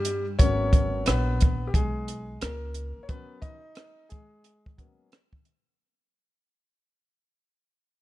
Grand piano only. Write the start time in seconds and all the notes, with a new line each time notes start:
Already playing: G3 G4
0.39 F#3 B3 C#4 A#4 C#5
1.06 B3 B4
1.67 G4
1.75 G#3 G#4
2.42 A#3 A#4
3.03 C#5
3.09 F#3 B3 C#4 A#4 B4
3.42 D#4 D#5
4.09 G#3 G#4
4.77 F#3 A#3 B3 C#4